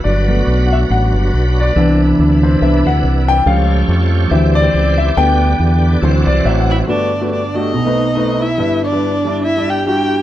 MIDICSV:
0, 0, Header, 1, 6, 480
1, 0, Start_track
1, 0, Key_signature, 1, "major"
1, 0, Tempo, 426743
1, 55, Time_signature, 4, 2, 24, 8
1, 11499, End_track
2, 0, Start_track
2, 0, Title_t, "Erhu"
2, 0, Program_c, 0, 110
2, 7544, Note_on_c, 0, 76, 74
2, 7632, Note_off_c, 0, 76, 0
2, 7745, Note_on_c, 0, 74, 74
2, 8184, Note_off_c, 0, 74, 0
2, 8236, Note_on_c, 0, 74, 72
2, 8502, Note_on_c, 0, 75, 81
2, 8519, Note_off_c, 0, 74, 0
2, 9469, Note_on_c, 0, 76, 78
2, 9486, Note_off_c, 0, 75, 0
2, 9937, Note_off_c, 0, 76, 0
2, 9943, Note_on_c, 0, 74, 86
2, 10577, Note_off_c, 0, 74, 0
2, 10633, Note_on_c, 0, 76, 84
2, 10911, Note_on_c, 0, 79, 83
2, 10928, Note_off_c, 0, 76, 0
2, 11106, Note_off_c, 0, 79, 0
2, 11114, Note_on_c, 0, 79, 85
2, 11499, Note_off_c, 0, 79, 0
2, 11499, End_track
3, 0, Start_track
3, 0, Title_t, "Alto saxophone"
3, 0, Program_c, 1, 65
3, 7543, Note_on_c, 1, 64, 81
3, 7632, Note_off_c, 1, 64, 0
3, 7749, Note_on_c, 1, 62, 79
3, 8186, Note_off_c, 1, 62, 0
3, 8237, Note_on_c, 1, 62, 68
3, 8700, Note_on_c, 1, 63, 79
3, 8717, Note_off_c, 1, 62, 0
3, 9450, Note_on_c, 1, 64, 72
3, 9467, Note_off_c, 1, 63, 0
3, 9937, Note_on_c, 1, 62, 81
3, 9954, Note_off_c, 1, 64, 0
3, 10627, Note_on_c, 1, 64, 89
3, 10644, Note_off_c, 1, 62, 0
3, 10901, Note_on_c, 1, 67, 82
3, 10918, Note_off_c, 1, 64, 0
3, 11094, Note_off_c, 1, 67, 0
3, 11101, Note_on_c, 1, 67, 89
3, 11499, Note_off_c, 1, 67, 0
3, 11499, End_track
4, 0, Start_track
4, 0, Title_t, "Grand piano"
4, 0, Program_c, 2, 0
4, 45, Note_on_c, 2, 74, 80
4, 315, Note_on_c, 2, 54, 47
4, 321, Note_on_c, 2, 57, 38
4, 335, Note_on_c, 2, 59, 52
4, 750, Note_on_c, 2, 78, 66
4, 756, Note_off_c, 2, 74, 0
4, 813, Note_off_c, 2, 78, 0
4, 814, Note_on_c, 2, 76, 95
4, 871, Note_off_c, 2, 76, 0
4, 1028, Note_on_c, 2, 78, 91
4, 1797, Note_off_c, 2, 78, 0
4, 1798, Note_on_c, 2, 74, 93
4, 1923, Note_off_c, 2, 54, 0
4, 1927, Note_off_c, 2, 57, 0
4, 1934, Note_off_c, 2, 59, 0
4, 1985, Note_on_c, 2, 52, 55
4, 1987, Note_on_c, 2, 59, 49
4, 1996, Note_on_c, 2, 62, 65
4, 2230, Note_off_c, 2, 74, 0
4, 2737, Note_on_c, 2, 72, 75
4, 2920, Note_off_c, 2, 52, 0
4, 2929, Note_off_c, 2, 59, 0
4, 2931, Note_off_c, 2, 62, 0
4, 2937, Note_on_c, 2, 52, 47
4, 2945, Note_off_c, 2, 72, 0
4, 2946, Note_on_c, 2, 59, 43
4, 2948, Note_on_c, 2, 62, 47
4, 2949, Note_on_c, 2, 76, 81
4, 3181, Note_off_c, 2, 52, 0
4, 3186, Note_off_c, 2, 59, 0
4, 3187, Note_off_c, 2, 62, 0
4, 3196, Note_off_c, 2, 76, 0
4, 3226, Note_on_c, 2, 78, 97
4, 3694, Note_on_c, 2, 79, 113
4, 3710, Note_off_c, 2, 78, 0
4, 3893, Note_on_c, 2, 53, 60
4, 3896, Note_on_c, 2, 55, 56
4, 3903, Note_off_c, 2, 79, 0
4, 3904, Note_on_c, 2, 77, 101
4, 3907, Note_on_c, 2, 61, 61
4, 4153, Note_off_c, 2, 77, 0
4, 4806, Note_off_c, 2, 53, 0
4, 4808, Note_off_c, 2, 55, 0
4, 4814, Note_off_c, 2, 61, 0
4, 4846, Note_on_c, 2, 52, 54
4, 4851, Note_on_c, 2, 55, 48
4, 4851, Note_on_c, 2, 76, 85
4, 4862, Note_on_c, 2, 60, 62
4, 5121, Note_on_c, 2, 74, 115
4, 5132, Note_off_c, 2, 76, 0
4, 5563, Note_off_c, 2, 52, 0
4, 5565, Note_off_c, 2, 55, 0
4, 5568, Note_off_c, 2, 74, 0
4, 5571, Note_off_c, 2, 60, 0
4, 5599, Note_on_c, 2, 76, 101
4, 5811, Note_on_c, 2, 50, 60
4, 5814, Note_off_c, 2, 76, 0
4, 5814, Note_on_c, 2, 55, 56
4, 5817, Note_on_c, 2, 59, 68
4, 5820, Note_on_c, 2, 79, 116
4, 6148, Note_off_c, 2, 50, 0
4, 6149, Note_off_c, 2, 55, 0
4, 6151, Note_off_c, 2, 59, 0
4, 6522, Note_off_c, 2, 79, 0
4, 6779, Note_on_c, 2, 52, 54
4, 6787, Note_on_c, 2, 54, 50
4, 6788, Note_on_c, 2, 72, 84
4, 6793, Note_on_c, 2, 60, 63
4, 6847, Note_off_c, 2, 72, 0
4, 7052, Note_on_c, 2, 74, 96
4, 7240, Note_off_c, 2, 74, 0
4, 7262, Note_on_c, 2, 76, 92
4, 7420, Note_off_c, 2, 76, 0
4, 7430, Note_on_c, 2, 78, 84
4, 7689, Note_off_c, 2, 52, 0
4, 7693, Note_off_c, 2, 54, 0
4, 7695, Note_off_c, 2, 60, 0
4, 7718, Note_off_c, 2, 78, 0
4, 7728, Note_on_c, 2, 57, 64
4, 7731, Note_on_c, 2, 66, 59
4, 7738, Note_on_c, 2, 43, 60
4, 7740, Note_on_c, 2, 31, 56
4, 7747, Note_on_c, 2, 67, 54
4, 7747, Note_on_c, 2, 71, 70
4, 7966, Note_off_c, 2, 57, 0
4, 7968, Note_off_c, 2, 66, 0
4, 7975, Note_off_c, 2, 67, 0
4, 7975, Note_off_c, 2, 71, 0
4, 8099, Note_on_c, 2, 57, 56
4, 8109, Note_on_c, 2, 66, 55
4, 8116, Note_on_c, 2, 67, 52
4, 8123, Note_on_c, 2, 71, 62
4, 8307, Note_off_c, 2, 57, 0
4, 8312, Note_off_c, 2, 66, 0
4, 8316, Note_off_c, 2, 67, 0
4, 8319, Note_off_c, 2, 71, 0
4, 8484, Note_on_c, 2, 57, 63
4, 8493, Note_on_c, 2, 66, 57
4, 8504, Note_on_c, 2, 67, 57
4, 8510, Note_on_c, 2, 69, 64
4, 8649, Note_off_c, 2, 43, 0
4, 8650, Note_off_c, 2, 31, 0
4, 8664, Note_off_c, 2, 57, 0
4, 8668, Note_off_c, 2, 66, 0
4, 8673, Note_off_c, 2, 67, 0
4, 8677, Note_off_c, 2, 69, 0
4, 8699, Note_on_c, 2, 35, 55
4, 8703, Note_on_c, 2, 47, 57
4, 8830, Note_on_c, 2, 57, 62
4, 8838, Note_on_c, 2, 60, 56
4, 8846, Note_on_c, 2, 63, 54
4, 8852, Note_on_c, 2, 71, 70
4, 9042, Note_off_c, 2, 57, 0
4, 9046, Note_off_c, 2, 60, 0
4, 9050, Note_off_c, 2, 63, 0
4, 9053, Note_off_c, 2, 71, 0
4, 9168, Note_on_c, 2, 57, 65
4, 9177, Note_on_c, 2, 60, 53
4, 9182, Note_on_c, 2, 63, 57
4, 9192, Note_on_c, 2, 71, 74
4, 9476, Note_off_c, 2, 57, 0
4, 9480, Note_off_c, 2, 60, 0
4, 9483, Note_off_c, 2, 63, 0
4, 9488, Note_off_c, 2, 71, 0
4, 9611, Note_off_c, 2, 35, 0
4, 9613, Note_off_c, 2, 47, 0
4, 9646, Note_on_c, 2, 55, 65
4, 9653, Note_on_c, 2, 62, 56
4, 9657, Note_on_c, 2, 43, 55
4, 9660, Note_on_c, 2, 31, 55
4, 9665, Note_on_c, 2, 64, 58
4, 9668, Note_on_c, 2, 71, 68
4, 9887, Note_off_c, 2, 55, 0
4, 9890, Note_off_c, 2, 62, 0
4, 9896, Note_off_c, 2, 64, 0
4, 9897, Note_off_c, 2, 71, 0
4, 10027, Note_on_c, 2, 55, 57
4, 10032, Note_on_c, 2, 62, 52
4, 10042, Note_on_c, 2, 64, 55
4, 10047, Note_on_c, 2, 71, 69
4, 10233, Note_off_c, 2, 55, 0
4, 10235, Note_off_c, 2, 62, 0
4, 10240, Note_off_c, 2, 64, 0
4, 10243, Note_off_c, 2, 71, 0
4, 10399, Note_on_c, 2, 55, 62
4, 10406, Note_on_c, 2, 62, 57
4, 10416, Note_on_c, 2, 64, 57
4, 10420, Note_on_c, 2, 74, 63
4, 10583, Note_off_c, 2, 55, 0
4, 10586, Note_off_c, 2, 62, 0
4, 10591, Note_off_c, 2, 64, 0
4, 10593, Note_off_c, 2, 74, 0
4, 10760, Note_on_c, 2, 55, 56
4, 10764, Note_on_c, 2, 62, 53
4, 10773, Note_on_c, 2, 64, 57
4, 10779, Note_on_c, 2, 74, 65
4, 10968, Note_off_c, 2, 55, 0
4, 10970, Note_off_c, 2, 62, 0
4, 10975, Note_off_c, 2, 64, 0
4, 10978, Note_off_c, 2, 74, 0
4, 11094, Note_on_c, 2, 55, 67
4, 11097, Note_on_c, 2, 62, 61
4, 11106, Note_on_c, 2, 64, 54
4, 11111, Note_on_c, 2, 66, 68
4, 11400, Note_off_c, 2, 55, 0
4, 11402, Note_off_c, 2, 62, 0
4, 11406, Note_off_c, 2, 64, 0
4, 11409, Note_off_c, 2, 66, 0
4, 11499, Note_off_c, 2, 31, 0
4, 11499, Note_off_c, 2, 43, 0
4, 11499, End_track
5, 0, Start_track
5, 0, Title_t, "Tonewheel organ"
5, 0, Program_c, 3, 16
5, 0, Note_on_c, 3, 66, 50
5, 0, Note_on_c, 3, 71, 68
5, 47, Note_on_c, 3, 54, 57
5, 49, Note_on_c, 3, 62, 48
5, 1939, Note_off_c, 3, 66, 0
5, 1952, Note_off_c, 3, 54, 0
5, 1953, Note_off_c, 3, 62, 0
5, 1967, Note_on_c, 3, 48, 54
5, 1976, Note_on_c, 3, 62, 52
5, 1978, Note_on_c, 3, 52, 62
5, 3848, Note_off_c, 3, 71, 0
5, 3870, Note_off_c, 3, 48, 0
5, 3875, Note_off_c, 3, 62, 0
5, 3876, Note_off_c, 3, 52, 0
5, 3889, Note_on_c, 3, 67, 59
5, 3892, Note_on_c, 3, 57, 52
5, 3893, Note_on_c, 3, 53, 57
5, 3902, Note_on_c, 3, 73, 66
5, 4836, Note_on_c, 3, 60, 66
5, 4838, Note_on_c, 3, 74, 82
5, 4841, Note_off_c, 3, 57, 0
5, 4842, Note_off_c, 3, 53, 0
5, 4846, Note_on_c, 3, 52, 67
5, 4847, Note_off_c, 3, 73, 0
5, 5792, Note_off_c, 3, 60, 0
5, 5798, Note_off_c, 3, 52, 0
5, 5803, Note_on_c, 3, 50, 67
5, 5804, Note_on_c, 3, 59, 55
5, 6738, Note_off_c, 3, 67, 0
5, 6755, Note_off_c, 3, 50, 0
5, 6756, Note_off_c, 3, 59, 0
5, 6763, Note_on_c, 3, 52, 71
5, 6766, Note_on_c, 3, 60, 67
5, 6772, Note_on_c, 3, 66, 64
5, 7693, Note_off_c, 3, 74, 0
5, 7716, Note_off_c, 3, 52, 0
5, 7718, Note_off_c, 3, 60, 0
5, 7721, Note_off_c, 3, 66, 0
5, 11499, End_track
6, 0, Start_track
6, 0, Title_t, "Fingered electric bass"
6, 0, Program_c, 4, 33
6, 52, Note_on_c, 4, 31, 92
6, 462, Note_off_c, 4, 31, 0
6, 525, Note_on_c, 4, 35, 89
6, 938, Note_off_c, 4, 35, 0
6, 1014, Note_on_c, 4, 33, 96
6, 1247, Note_off_c, 4, 33, 0
6, 1280, Note_on_c, 4, 31, 80
6, 1460, Note_off_c, 4, 31, 0
6, 1500, Note_on_c, 4, 35, 79
6, 1906, Note_off_c, 4, 35, 0
6, 1979, Note_on_c, 4, 36, 110
6, 2385, Note_off_c, 4, 36, 0
6, 2461, Note_on_c, 4, 38, 81
6, 2866, Note_off_c, 4, 38, 0
6, 2941, Note_on_c, 4, 36, 85
6, 3170, Note_off_c, 4, 36, 0
6, 3209, Note_on_c, 4, 38, 80
6, 3384, Note_off_c, 4, 38, 0
6, 3416, Note_on_c, 4, 36, 77
6, 3823, Note_off_c, 4, 36, 0
6, 3890, Note_on_c, 4, 37, 110
6, 4299, Note_off_c, 4, 37, 0
6, 4367, Note_on_c, 4, 41, 93
6, 4777, Note_off_c, 4, 41, 0
6, 4850, Note_on_c, 4, 38, 106
6, 5258, Note_off_c, 4, 38, 0
6, 5331, Note_on_c, 4, 37, 81
6, 5738, Note_off_c, 4, 37, 0
6, 5816, Note_on_c, 4, 38, 109
6, 6221, Note_off_c, 4, 38, 0
6, 6293, Note_on_c, 4, 40, 88
6, 6699, Note_off_c, 4, 40, 0
6, 6774, Note_on_c, 4, 38, 103
6, 7004, Note_off_c, 4, 38, 0
6, 7047, Note_on_c, 4, 36, 88
6, 7220, Note_off_c, 4, 36, 0
6, 7255, Note_on_c, 4, 33, 97
6, 7660, Note_off_c, 4, 33, 0
6, 11499, End_track
0, 0, End_of_file